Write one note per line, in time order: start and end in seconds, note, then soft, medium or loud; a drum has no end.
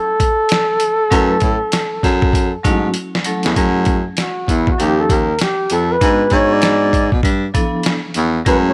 0.00 2.96 A4 loud
0.20 kick medium
0.20 closed hi-hat medium
0.49 snare loud
0.49 closed hi-hat medium
0.80 closed hi-hat medium
1.11 1.36 F#2 loud
1.11 1.35 F#3 medium
1.11 1.35 A3 medium
1.11 1.35 C#4 medium
1.11 1.35 E4 medium
1.11 1.35 B4 loud
1.11 kick loud
1.11 closed hi-hat medium
1.40 1.57 A2 medium
1.40 kick medium
1.40 closed hi-hat medium
1.72 snare medium
1.72 closed hi-hat medium
2.03 2.52 F#2 loud
2.03 kick medium
2.03 snare soft
2.03 closed hi-hat medium
2.22 kick loud
2.33 kick loud
2.33 closed hi-hat medium
2.63 2.89 G#2 medium
2.63 2.88 F#3 medium
2.63 2.88 A3 medium
2.63 2.88 C#4 medium
2.63 2.88 E4 medium
2.63 2.89 F#4 medium
2.63 kick medium
2.63 closed hi-hat medium
2.94 closed hi-hat medium
3.15 snare medium
3.24 3.55 F#3 medium
3.24 3.55 A3 medium
3.24 3.56 C#4 medium
3.24 3.56 E4 medium
3.24 3.57 A4 medium
3.24 closed hi-hat medium
3.43 3.54 E2 medium
3.43 snare medium
3.43 closed hi-hat medium
3.56 4.05 F#2 loud
3.56 3.95 F#3 medium
3.56 3.95 A3 medium
3.56 3.95 C#4 medium
3.56 3.95 E4 medium
3.56 3.95 G#4 medium
3.56 kick medium
3.56 closed hi-hat medium
3.85 kick medium
3.85 closed hi-hat medium
4.17 4.52 F#4 medium
4.17 snare medium
4.17 closed hi-hat medium
4.48 4.73 E2 medium
4.48 4.71 E4 medium
4.48 kick medium
4.48 closed hi-hat medium
4.67 4.83 F#4 medium
4.67 kick medium
4.78 5.03 D#2 loud
4.78 5.17 F3 medium
4.78 5.17 A#3 medium
4.78 5.17 C#4 medium
4.78 5.17 D#4 medium
4.78 5.18 G4 medium
4.78 5.02 G4 medium
4.78 closed hi-hat medium
5.00 5.13 A4 loud
5.10 5.34 D#2 medium
5.10 5.41 A#4 medium
5.10 kick loud
5.10 closed hi-hat medium
5.39 snare medium
5.39 closed hi-hat medium
5.43 5.75 G4 medium
5.70 5.95 F2 medium
5.70 5.94 A4 medium
5.70 closed hi-hat medium
5.92 6.35 B4 loud
6.01 6.26 G#2 loud
6.01 6.88 G#3 medium
6.01 6.88 B3 medium
6.01 6.89 D4 medium
6.01 6.89 F#4 medium
6.01 6.89 G#4 medium
6.01 kick loud
6.01 closed hi-hat medium
6.30 7.08 G#2 loud
6.30 6.54 C#5 medium
6.30 kick medium
6.30 closed hi-hat soft
6.53 7.13 D5 loud
6.62 snare medium
6.62 closed hi-hat medium
6.93 kick medium
6.93 closed hi-hat medium
7.12 7.21 B2 medium
7.12 kick medium
7.23 7.48 G2 medium
7.23 kick loud
7.23 closed hi-hat medium
7.54 7.93 F3 medium
7.54 7.93 B3 medium
7.54 7.93 D4 medium
7.54 7.93 E4 medium
7.54 7.93 A4 medium
7.54 kick loud
7.54 closed hi-hat medium
7.83 snare loud
7.83 closed hi-hat medium
8.14 8.40 E2 loud
8.14 closed hi-hat medium
8.45 8.73 F#2 loud
8.45 8.73 F#3 medium
8.45 8.54 G#3 medium
8.45 8.73 C#4 medium
8.45 8.73 E4 medium
8.45 8.73 G#4 medium
8.45 8.57 B4 loud
8.45 kick loud
8.45 closed hi-hat medium
8.52 8.73 A3 medium
8.69 8.73 C#5 medium